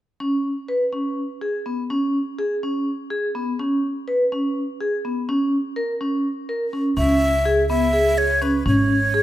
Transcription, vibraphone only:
0.20 0.47 C#4 medium
0.68 0.82 B4 medium
0.93 1.19 C#4 soft
1.41 1.55 G#4 soft
1.66 1.79 B3 soft
1.90 2.16 C#4 medium
2.39 2.52 G#4 medium
2.63 2.89 C#4 soft
3.10 3.24 G#4 medium
3.35 3.48 B3 soft
3.59 3.86 C#4 medium
4.08 4.21 B4 medium
4.32 4.58 C#4 medium
4.81 4.94 G#4 medium
5.05 5.18 B3 soft
5.29 5.55 C#4 medium
5.76 5.90 A#4 medium
6.01 6.27 C#4 medium
6.49 6.62 A#4 medium
6.73 6.86 C#4 medium
6.97 7.23 C#4 medium
7.45 7.59 G#4 medium
7.70 7.83 B3 medium
7.93 8.20 G#4 medium
8.42 8.55 C#4 medium
8.66 8.92 C#4 medium
9.14 9.23 G#4 medium

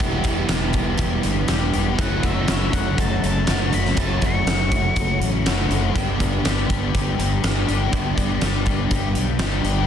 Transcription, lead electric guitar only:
2.01 2.25 F#5 medium
2.25 2.49 E5 medium
2.50 2.75 E5 medium
2.75 2.99 F#5 medium
3.00 3.24 A5 medium
3.25 3.75 A5 medium
3.75 3.99 B5 medium
4.00 4.24 A5 medium
4.25 5.19 C#6 medium

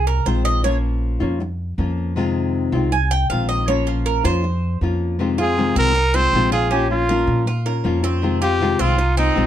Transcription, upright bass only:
0.00 0.22 C2 medium
0.26 1.15 A#1 medium
1.21 1.74 F2 medium
1.78 2.67 F2 medium
2.72 3.26 C2 loud
3.30 4.19 A#1 medium
4.24 4.77 F2 loud
4.81 5.70 F2 medium
5.76 6.29 C2 medium
6.33 7.22 A#1 medium
7.27 7.80 A#2 loud
7.85 8.73 F2 medium
8.79 9.32 C2 medium
9.36 9.47 A#1 medium

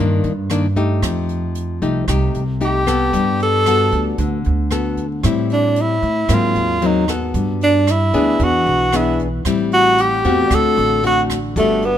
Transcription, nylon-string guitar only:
0.00 1.00 G2 medium
0.00 0.31 D#3 medium
0.00 0.32 A#3 medium
0.00 0.32 D4 medium
0.50 0.66 D#3 medium
0.50 0.66 A#3 medium
0.50 0.66 D4 medium
0.76 1.78 A3 medium
0.76 1.78 D#4 medium
0.76 1.78 G4 medium
1.03 2.06 F3 medium
1.82 2.04 A3 medium
1.82 2.04 D#4 medium
1.82 2.05 G4 medium
2.08 3.11 C3 medium
2.08 2.42 A3 soft
2.08 2.43 D#4 medium
2.08 2.43 G4 medium
2.61 2.83 A3 medium
2.61 2.83 D#4 medium
2.61 2.83 G4 medium
2.87 3.62 B3 medium
2.87 3.62 A4 medium
3.13 4.16 G3 medium
3.67 4.37 B3 medium
3.67 4.38 F#4 medium
3.67 4.38 A4 medium
4.19 5.22 D3 medium
4.71 5.05 B3 medium
4.71 5.06 F#4 medium
4.71 5.06 A4 medium
5.24 6.27 A2 soft
5.24 5.95 G3 medium
5.24 5.95 C4 soft
5.24 5.95 E4 medium
6.29 7.32 G#2 medium
6.29 6.78 F#3 medium
6.29 6.78 A#3 soft
6.29 6.78 C4 medium
6.82 7.04 F#3 medium
6.82 7.04 A#3 medium
6.82 7.05 C4 medium
7.09 7.83 B3 medium
7.09 7.84 F#4 medium
7.09 7.84 A4 medium
7.35 8.38 G3 medium
8.14 8.89 B3 medium
8.14 8.89 D4 medium
8.14 8.89 G#4 medium
8.40 9.43 E3 medium
8.93 9.27 B3 medium
8.93 9.27 D4 medium
8.93 9.27 G#4 medium
9.46 10.49 A2 medium
9.46 10.21 G3 medium
9.46 10.21 C4 medium
9.46 10.21 E4 medium
10.25 10.99 A3 medium
10.25 11.00 C4 medium
10.25 11.00 F#4 medium
10.51 11.54 D3 medium
11.04 11.37 A3 medium
11.04 11.38 C4 medium
11.04 11.38 F#4 medium
11.56 11.98 G3 medium
11.56 11.90 B3 soft
11.56 11.90 F#4 medium
11.56 11.91 A4 medium

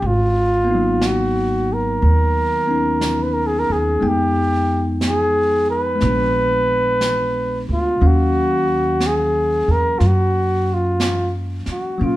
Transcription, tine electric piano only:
0.64 4.00 A#3 medium
0.64 2.66 B3 soft
0.71 4.05 F#3 medium
0.71 2.69 D#4 soft
2.67 4.00 B3 soft
2.67 4.02 C#4 soft
2.67 4.00 D#4 soft
4.00 5.94 G#3 soft
4.00 5.98 B3 soft
4.00 6.01 D#4 soft
4.00 6.02 G5 medium
5.95 7.98 G#3 soft
5.95 8.00 B3 soft
6.03 8.02 D4 soft
6.03 8.04 F4 soft
8.01 11.97 F#3 soft
8.01 11.98 A#3 soft
8.01 12.00 C#4 soft
8.01 12.01 F5 medium
11.98 12.16 F#3 soft
11.98 12.16 A#3 soft
11.98 12.16 C#4 soft
12.03 12.16 F4 medium

